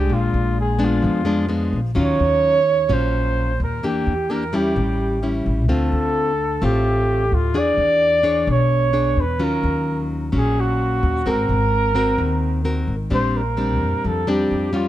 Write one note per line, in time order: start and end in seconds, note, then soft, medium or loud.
0.00 0.76 G#3 medium
0.00 0.77 D4 medium
0.00 0.15 G4 medium
0.10 0.32 A#1 medium
0.10 1.01 A#2 medium
0.10 0.58 F4 medium
0.34 0.99 A#1 medium
0.60 0.86 G#4 medium
0.79 1.22 G#3 medium
0.79 1.22 B3 medium
0.79 1.23 D4 medium
0.84 1.75 F4 medium
1.02 1.69 F2 medium
1.02 1.93 F3 medium
1.25 1.45 G#3 medium
1.25 1.46 B3 medium
1.25 1.46 D4 medium
1.49 1.79 G#3 soft
1.49 1.79 B3 medium
1.49 1.80 D4 medium
1.73 1.97 A#1 medium
1.95 2.18 D#2 medium
1.95 2.87 D#3 medium
1.95 2.58 F#3 medium
1.95 2.58 C#4 medium
1.95 2.59 F4 medium
2.01 2.95 C#5 loud
2.20 2.85 D#2 medium
2.89 3.55 A#1 medium
2.89 3.80 A#2 medium
2.89 3.52 F#3 soft
2.89 3.52 C#4 medium
2.89 3.52 F4 medium
2.93 3.61 C5 medium
3.60 3.83 D#2 medium
3.64 3.88 A#4 medium
3.83 4.04 E2 medium
3.83 4.73 E3 medium
3.83 4.13 A#3 soft
3.83 4.13 D4 medium
3.83 4.13 G4 medium
3.83 4.33 G4 medium
4.06 4.72 E2 medium
4.30 4.43 A#3 soft
4.30 4.43 D4 medium
4.30 4.44 G4 medium
4.30 4.57 A#4 medium
4.53 5.19 G3 medium
4.53 5.19 C#4 medium
4.53 5.19 E4 medium
4.53 5.47 G4 medium
4.76 5.41 A1 medium
4.76 5.67 A2 medium
5.23 5.65 G3 medium
5.23 5.65 C#4 soft
5.23 5.65 E4 medium
5.46 5.68 A1 medium
5.68 5.90 D2 medium
5.68 6.59 D3 soft
5.68 6.31 A3 medium
5.68 6.31 C4 medium
5.68 6.31 F4 medium
5.68 6.66 A4 medium
5.92 6.57 D2 medium
6.62 7.27 A1 medium
6.62 7.52 A2 soft
6.62 7.24 A3 medium
6.62 7.24 C4 medium
6.62 7.24 F4 medium
6.62 7.36 G4 medium
7.32 7.55 D2 medium
7.32 7.60 F4 medium
7.54 7.76 E2 medium
7.54 8.45 E3 medium
7.54 8.20 D4 medium
7.54 8.20 G#4 medium
7.58 8.49 D5 loud
7.78 8.43 E2 medium
8.23 8.89 D4 medium
8.23 8.90 G#4 medium
8.23 8.90 C#5 medium
8.47 9.13 B1 medium
8.47 9.38 B2 medium
8.51 9.22 C#5 medium
8.93 9.23 D4 medium
8.93 9.23 G#4 medium
8.93 9.24 C#5 medium
9.17 9.40 E2 medium
9.21 9.45 B4 medium
9.39 9.62 D#2 medium
9.39 10.30 D#3 medium
9.39 10.29 F#3 medium
9.39 10.29 C#4 medium
9.39 10.29 F4 medium
9.44 10.08 A#4 medium
9.63 10.29 D#2 medium
10.32 10.98 A#1 medium
10.32 11.23 A#2 medium
10.32 11.22 F#3 medium
10.32 11.22 C#4 medium
10.37 10.62 G#4 medium
10.60 11.31 F#4 medium
11.03 11.27 D#2 medium
11.26 11.47 G#1 medium
11.26 12.16 G#3 medium
11.26 11.92 C4 medium
11.26 11.92 F#4 medium
11.26 11.92 A#4 medium
11.26 12.67 A#4 loud
11.49 12.14 G#1 medium
11.95 12.61 C4 medium
11.95 12.61 F#4 medium
11.95 12.61 A#4 medium
12.18 12.84 D#2 medium
12.18 13.09 D#3 soft
12.65 12.95 C4 soft
12.65 12.95 F#4 soft
12.65 12.95 A#4 soft
12.88 13.09 G#1 medium
13.10 13.81 A#1 medium
13.10 14.01 A#2 soft
13.10 13.41 G3 soft
13.10 13.41 C4 soft
13.10 13.41 D4 soft
13.14 13.39 C5 loud
13.37 14.09 A#4 medium
13.57 14.23 G3 soft
13.57 14.24 C4 soft
13.57 14.24 D4 soft
13.81 13.92 F2 medium
14.04 14.48 F2 medium
14.04 14.88 F3 soft
14.04 14.31 A4 medium
14.27 14.70 G3 medium
14.27 14.70 C4 medium
14.27 14.70 D4 medium
14.27 14.79 G4 medium
14.51 14.88 F2 medium
14.73 14.88 G3 medium
14.73 14.88 C#4 soft
14.73 14.88 F4 medium
14.77 14.88 F4 medium